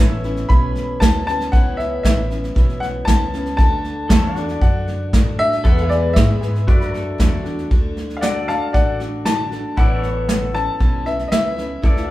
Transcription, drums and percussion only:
0.24 snare soft
0.36 snare soft
0.50 kick loud
0.50 snare soft
0.75 snare soft
1.02 kick medium
1.02 snare loud
1.02 hi-hat pedal medium
1.28 snare soft
1.40 snare soft
1.53 kick loud
1.53 snare soft
1.79 snare soft
2.05 kick medium
2.05 snare loud
2.05 hi-hat pedal medium
2.31 snare soft
2.44 snare soft
2.56 kick loud
2.56 snare soft
2.69 snare soft
2.82 snare soft
3.07 kick medium
3.07 snare loud
3.07 hi-hat pedal medium
3.33 snare soft
3.46 snare soft
3.58 kick loud
3.58 snare soft
3.84 snare soft
4.10 kick loud
4.10 snare loud
4.10 hi-hat pedal medium
4.36 snare soft
4.49 snare soft
4.61 kick loud
4.61 snare soft
4.88 snare soft
5.13 kick loud
5.13 snare loud
5.13 hi-hat pedal medium
5.39 snare soft
5.52 snare soft
5.65 kick loud
5.65 snare soft
5.78 snare soft
5.91 snare soft
6.16 kick loud
6.16 snare loud
6.16 hi-hat pedal medium
6.42 snare soft
6.55 snare soft
6.68 kick loud
6.68 snare soft
6.81 snare soft
6.94 snare soft
7.20 kick medium
7.20 snare loud
7.20 hi-hat pedal medium
7.46 snare soft
7.58 snare soft
7.71 kick loud
7.71 snare soft
7.97 snare soft
8.10 snare soft
8.22 snare loud
8.22 hi-hat pedal medium
8.48 snare soft
8.74 kick loud
8.74 snare soft
9.00 snare soft
9.26 snare loud
9.26 hi-hat pedal medium
9.52 snare soft
9.77 kick loud
9.77 snare soft
10.03 snare soft
10.29 snare loud
10.29 hi-hat pedal medium
10.55 snare soft
10.80 kick loud
10.80 snare soft
11.06 snare soft
11.19 snare soft
11.32 snare loud
11.32 hi-hat pedal medium
11.58 snare soft
11.83 kick loud
11.83 snare soft
11.97 snare soft

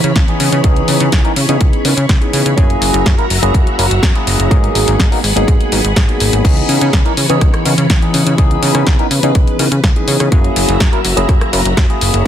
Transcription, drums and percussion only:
0.04 closed hi-hat soft
0.16 kick loud
0.16 snare loud
0.16 closed hi-hat soft
0.28 closed hi-hat soft
0.40 open hi-hat loud
0.53 closed hi-hat soft
0.64 kick loud
0.64 closed hi-hat medium
0.76 closed hi-hat soft
0.88 open hi-hat loud
1.00 closed hi-hat medium
1.12 kick loud
1.12 snare loud
1.12 closed hi-hat medium
1.25 closed hi-hat soft
1.36 open hi-hat loud
1.49 closed hi-hat medium
1.61 kick loud
1.61 closed hi-hat medium
1.73 closed hi-hat soft
1.85 open hi-hat loud
1.98 closed hi-hat medium
2.09 kick loud
2.09 snare loud
2.09 closed hi-hat medium
2.22 closed hi-hat soft
2.33 open hi-hat loud
2.46 closed hi-hat medium
2.58 kick loud
2.58 closed hi-hat medium
2.70 closed hi-hat soft
2.82 open hi-hat loud
2.94 closed hi-hat medium
3.06 kick loud
3.06 snare loud
3.06 closed hi-hat medium
3.18 closed hi-hat soft
3.30 open hi-hat loud
3.43 closed hi-hat medium
3.54 kick loud
3.54 closed hi-hat medium
3.67 closed hi-hat soft
3.79 open hi-hat loud
3.91 closed hi-hat medium
4.03 kick loud
4.03 snare loud
4.03 closed hi-hat medium
4.15 closed hi-hat soft
4.27 open hi-hat loud
4.40 closed hi-hat medium
4.51 kick loud
4.51 closed hi-hat medium
4.64 closed hi-hat soft
4.75 open hi-hat loud
4.88 closed hi-hat medium
5.00 kick loud
5.00 snare loud
5.00 closed hi-hat medium
5.12 open hi-hat medium
5.24 open hi-hat loud
5.37 closed hi-hat medium
5.48 kick loud
5.48 closed hi-hat medium
5.61 closed hi-hat soft
5.72 open hi-hat loud
5.85 closed hi-hat medium
5.96 kick loud
5.96 snare loud
5.96 closed hi-hat medium
6.09 closed hi-hat soft
6.20 open hi-hat loud
6.33 closed hi-hat medium
6.45 kick loud
6.45 closed hi-hat medium
6.45 crash medium
6.57 closed hi-hat soft
6.69 open hi-hat loud
6.81 closed hi-hat medium
6.93 kick loud
6.93 snare loud
6.93 closed hi-hat medium
7.06 closed hi-hat soft
7.17 open hi-hat loud
7.30 closed hi-hat medium
7.41 kick loud
7.41 cross-stick medium
7.41 closed hi-hat medium
7.54 cross-stick medium
7.54 closed hi-hat soft
7.65 open hi-hat loud
7.78 closed hi-hat medium
7.90 kick loud
7.90 snare loud
7.90 closed hi-hat medium
8.02 closed hi-hat soft
8.14 open hi-hat loud
8.27 closed hi-hat medium
8.38 kick loud
8.38 closed hi-hat medium
8.51 closed hi-hat soft
8.63 open hi-hat loud
8.75 cross-stick medium
8.75 closed hi-hat medium
8.87 kick loud
8.87 snare loud
8.87 closed hi-hat medium
8.99 closed hi-hat soft
9.11 open hi-hat loud
9.23 closed hi-hat medium
9.35 kick loud
9.35 closed hi-hat medium
9.47 closed hi-hat soft
9.59 open hi-hat loud
9.72 closed hi-hat medium
9.84 kick loud
9.84 snare loud
9.84 closed hi-hat medium
9.96 closed hi-hat soft
10.08 open hi-hat loud
10.20 cross-stick medium
10.20 closed hi-hat medium
10.32 kick loud
10.32 closed hi-hat soft
10.44 closed hi-hat soft
10.56 open hi-hat loud
10.69 closed hi-hat medium
10.80 kick loud
10.80 snare loud
10.80 closed hi-hat medium
10.93 closed hi-hat soft
11.05 open hi-hat loud
11.17 closed hi-hat medium
11.29 kick loud
11.29 cross-stick medium
11.29 closed hi-hat soft
11.41 cross-stick medium
11.41 closed hi-hat soft
11.53 open hi-hat loud
11.65 closed hi-hat medium
11.77 kick loud
11.77 snare loud
11.77 closed hi-hat medium
11.90 closed hi-hat soft
12.01 open hi-hat loud
12.14 closed hi-hat soft

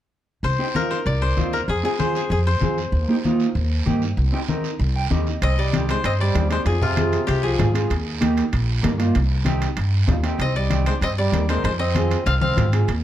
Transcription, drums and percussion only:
0.44 long guiro medium
0.75 high conga medium
0.75 short guiro medium
0.91 short guiro medium
1.06 long guiro medium
1.37 high conga medium
1.37 short guiro medium
1.53 short guiro medium
1.69 long guiro medium
2.00 high conga medium
2.00 short guiro medium
2.15 short guiro medium
2.31 long guiro medium
2.62 high conga medium
2.62 short guiro medium
2.78 short guiro medium
2.93 long guiro medium
3.25 high conga medium
3.25 short guiro medium
3.40 short guiro medium
3.55 long guiro medium
3.87 high conga medium
3.87 short guiro medium
4.02 short guiro medium
4.17 long guiro medium
4.48 high conga medium
4.48 short guiro medium
4.64 short guiro medium
4.80 long guiro medium
5.11 high conga medium
5.11 short guiro medium
5.27 short guiro medium
5.42 high timbale medium
5.42 long guiro medium
5.73 high conga medium
5.73 high timbale medium
5.73 short guiro medium
5.89 high timbale medium
5.89 short guiro medium
6.04 high timbale medium
6.04 long guiro medium
6.35 high conga medium
6.35 high timbale medium
6.35 low timbale medium
6.35 short guiro medium
6.51 high timbale medium
6.51 short guiro medium
6.66 high timbale medium
6.66 long guiro medium
6.82 low conga medium
6.97 high conga medium
6.97 high timbale medium
6.97 short guiro medium
7.12 high timbale medium
7.12 short guiro medium
7.28 high timbale medium
7.28 long guiro medium
7.60 high conga medium
7.60 low conga medium
7.60 high timbale medium
7.60 low timbale medium
7.60 short guiro medium
7.75 high timbale medium
7.75 short guiro medium
7.90 high timbale medium
7.90 long guiro medium
8.21 high conga medium
8.21 high timbale medium
8.21 short guiro medium
8.37 high timbale medium
8.37 short guiro medium
8.53 high timbale medium
8.53 long guiro medium
8.84 high conga medium
8.84 high timbale medium
8.84 low timbale medium
8.84 short guiro medium
9.00 high timbale medium
9.00 short guiro medium
9.15 high timbale medium
9.15 long guiro medium
9.46 high conga medium
9.46 high timbale medium
9.46 short guiro medium
9.62 high timbale medium
9.62 short guiro medium
9.77 high timbale medium
9.77 long guiro medium
10.08 high conga medium
10.08 low conga medium
10.08 high timbale medium
10.08 low timbale medium
10.08 short guiro medium
10.24 high timbale medium
10.24 short guiro medium
10.40 high timbale medium
10.40 long guiro medium
10.70 high conga medium
10.70 high timbale medium
10.70 short guiro medium
10.86 high timbale medium
10.86 short guiro medium
11.02 high timbale medium
11.02 long guiro medium
11.33 high conga medium
11.33 high timbale medium
11.33 short guiro medium
11.49 high timbale medium
11.49 short guiro medium
11.65 high timbale medium
11.65 long guiro medium
11.95 high conga medium
11.95 high timbale medium
11.95 short guiro medium
12.11 high timbale medium
12.11 short guiro medium
12.26 high timbale medium
12.26 long guiro medium
12.41 high conga medium
12.57 high conga medium
12.57 low conga medium
12.57 high timbale medium
12.57 short guiro medium
12.72 high timbale medium
12.72 short guiro medium
12.88 high timbale medium
12.88 long guiro medium

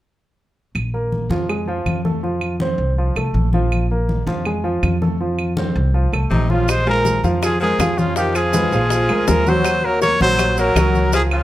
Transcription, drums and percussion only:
0.75 high conga soft
0.75 claves medium
0.94 high conga soft
1.12 high conga medium
1.30 high conga medium
1.49 high conga soft
1.49 claves medium
1.68 high conga soft
1.86 high conga medium
1.86 claves medium
2.05 high conga medium
2.24 high conga soft
2.41 high conga soft
2.41 claves medium
2.60 high conga medium
2.98 high conga soft
3.16 high conga soft
3.16 claves medium
3.35 high conga medium
3.53 high conga medium
3.72 high conga soft
3.72 claves medium
3.91 high conga soft
4.09 high conga medium
4.27 high conga medium
4.45 high conga soft
4.45 claves medium
4.65 high conga soft
4.83 high conga medium
4.83 claves medium
5.02 high conga medium
5.21 high conga soft
5.39 high conga soft
5.39 claves medium
5.57 high conga loud
5.94 high conga soft
6.13 high conga soft
6.13 claves medium
6.32 high conga medium
6.50 high conga medium
6.68 high bongo medium
6.68 high conga soft
6.68 claves medium
6.68 maracas medium
6.87 high conga soft
7.05 high bongo medium
7.05 high conga medium
7.05 maracas medium
7.24 high bongo soft
7.24 high conga medium
7.24 maracas soft
7.43 high bongo medium
7.43 high conga soft
7.43 claves medium
7.43 maracas medium
7.61 high bongo soft
7.61 high conga soft
7.80 high bongo medium
7.80 low bongo medium
7.80 high conga medium
7.80 claves medium
7.80 maracas medium
7.98 high bongo soft
7.98 high conga medium
7.98 maracas soft
8.16 high bongo medium
8.16 high conga soft
8.16 maracas medium
8.35 high conga soft
8.35 claves medium
8.35 maracas medium
8.53 high bongo medium
8.53 high conga medium
8.53 maracas medium
8.71 high bongo soft
8.71 maracas soft
8.90 high bongo medium
8.90 high conga soft
8.90 maracas medium
9.09 high conga soft
9.09 claves medium
9.28 high bongo medium
9.28 low bongo medium
9.28 high conga medium
9.28 maracas medium
9.46 high bongo soft
9.46 high conga medium
9.46 maracas soft
9.65 high bongo medium
9.65 high conga soft
9.65 claves medium
9.65 maracas medium
9.85 high conga soft
10.02 high bongo soft
10.02 high conga medium
10.02 maracas medium
10.21 high bongo soft
10.21 high conga medium
10.21 maracas soft
10.39 high bongo medium
10.39 high conga soft
10.39 claves medium
10.39 maracas medium
10.57 high bongo soft
10.57 high conga soft
10.57 maracas medium
10.76 high bongo medium
10.76 low bongo medium
10.76 high conga medium
10.76 claves medium
10.76 maracas medium
10.95 high bongo soft
10.95 high conga medium
10.95 maracas soft
11.13 high bongo medium
11.13 high conga soft
11.13 maracas medium
11.31 high conga soft
11.31 claves medium

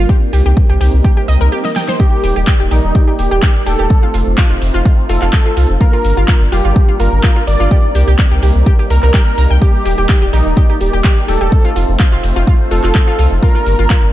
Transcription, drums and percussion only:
0.09 kick loud
0.33 open hi-hat loud
0.57 kick loud
0.81 open hi-hat medium
1.04 kick loud
1.28 open hi-hat loud
1.65 snare soft
1.76 snare medium
1.76 open hi-hat medium
1.89 snare medium
2.00 kick loud
2.24 open hi-hat loud
2.47 kick loud
2.47 clap loud
2.71 open hi-hat medium
2.95 kick loud
3.19 open hi-hat loud
3.42 kick loud
3.42 clap loud
3.66 open hi-hat medium
3.90 kick loud
4.14 open hi-hat loud
4.38 kick loud
4.38 clap loud
4.62 open hi-hat medium
4.85 kick loud
5.09 open hi-hat loud
5.22 clap soft
5.33 kick loud
5.33 clap loud
5.57 open hi-hat loud
5.81 kick loud
6.05 open hi-hat loud
6.28 kick loud
6.28 clap loud
6.52 open hi-hat medium
6.76 kick loud
7.00 open hi-hat loud
7.23 kick loud
7.23 clap loud
7.47 open hi-hat medium
7.71 kick loud
7.95 open hi-hat loud
8.19 kick loud
8.19 clap loud
8.43 open hi-hat medium
8.66 kick loud
8.90 open hi-hat loud
9.03 clap soft
9.14 kick loud
9.14 clap loud
9.38 open hi-hat medium
9.62 kick loud
9.85 open hi-hat loud
10.09 kick loud
10.09 clap loud
10.33 open hi-hat medium
10.57 kick loud
10.81 open hi-hat loud
11.04 kick loud
11.04 clap loud
11.28 open hi-hat medium
11.52 kick loud
11.76 open hi-hat loud
12.00 kick loud
12.00 clap loud
12.23 open hi-hat medium
12.47 kick loud
12.71 open hi-hat medium
12.84 clap soft
12.95 kick loud
12.95 clap loud
13.19 open hi-hat medium
13.43 kick loud
13.66 open hi-hat loud
13.90 kick loud
13.90 clap loud

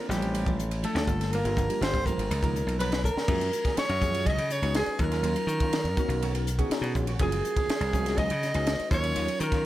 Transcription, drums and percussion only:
0.11 snare soft
0.11 hi-hat pedal medium
0.22 ride medium
0.35 ride medium
0.46 kick medium
0.46 ride medium
0.59 hi-hat pedal medium
0.71 ride medium
0.84 ride medium
0.96 snare loud
0.96 ride medium
1.08 kick medium
1.08 hi-hat pedal medium
1.21 snare soft
1.21 ride medium
1.33 ride medium
1.45 ride medium
1.57 kick medium
1.57 hi-hat pedal medium
1.70 ride medium
1.82 snare loud
1.82 ride medium
1.94 kick medium
1.94 ride medium
2.06 kick medium
2.06 hi-hat pedal medium
2.19 ride medium
2.31 ride medium
2.43 kick medium
2.43 ride medium
2.55 hi-hat pedal medium
2.69 ride medium
2.80 ride medium
2.92 snare medium
2.92 ride medium
3.04 kick medium
3.04 hi-hat pedal medium
3.17 snare medium
3.28 kick loud
3.28 crash medium
3.41 ride medium
3.53 hi-hat pedal medium
3.65 kick medium
3.65 snare soft
3.65 ride medium
3.77 snare loud
3.77 ride medium
3.89 ride medium
4.02 kick medium
4.02 hi-hat pedal medium
4.14 ride medium
4.26 kick medium
4.26 ride medium
4.38 ride medium
4.50 hi-hat pedal medium
4.63 ride medium
4.74 snare loud
4.74 ride medium
4.86 ride soft
4.99 kick loud
4.99 hi-hat pedal medium
5.12 snare soft
5.12 ride medium
5.24 ride medium
5.36 ride medium
5.48 hi-hat pedal medium
5.60 kick medium
5.60 ride medium
5.73 snare loud
5.73 ride medium
5.85 ride medium
5.97 kick medium
5.97 hi-hat pedal medium
6.10 ride medium
6.22 ride medium
6.35 ride medium
6.47 hi-hat pedal medium
6.59 kick medium
6.59 ride medium
6.71 snare loud
6.71 ride medium
6.84 ride medium
6.95 kick medium
6.95 hi-hat pedal medium
7.07 ride medium
7.19 kick loud
7.19 ride medium
7.32 ride medium
7.45 hi-hat pedal medium
7.56 kick medium
7.56 ride medium
7.69 snare loud
7.69 ride medium
7.81 ride medium
7.93 kick medium
7.93 hi-hat pedal medium
8.06 snare soft
8.06 ride medium
8.18 kick medium
8.18 ride medium
8.30 ride medium
8.43 snare soft
8.43 hi-hat pedal medium
8.54 ride medium
8.67 snare loud
8.67 ride medium
8.80 ride soft
8.91 kick medium
8.91 hi-hat pedal medium
9.04 ride medium
9.16 ride medium
9.28 ride medium
9.40 hi-hat pedal medium
9.52 kick medium
9.52 snare soft
9.52 ride medium

